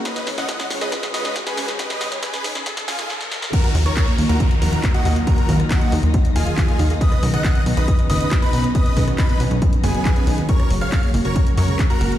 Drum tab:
CC |----------------|----------------|x---------------|----------------|
HH |xxoxxxoxxxoxxxox|xxoxxxoxxxox----|xxoxxxoxxxoxxxox|xxoxxxoxxxoxxxox|
CP |----------------|----------------|----x-------x---|----x-------x---|
SD |oooooooooooooooo|oooooooooooooooo|-r-r------------|---r------------|
BD |o---o---o---o---|o-o-o---o-------|o---o---o---o---|o-o-o---o---o---|

CC |----------------|----------------|----------------|
HH |xxoxxxoxxxoxxxox|xxoxxxoxxxoxxxox|xxoxxxoxxxoxxxox|
CP |----x-------x---|----x-------x---|----x-------x---|
SD |-r-r------------|---r------------|-r-r------------|
BD |o---o---o---o---|o-o-o---o---o---|o---o---o---o---|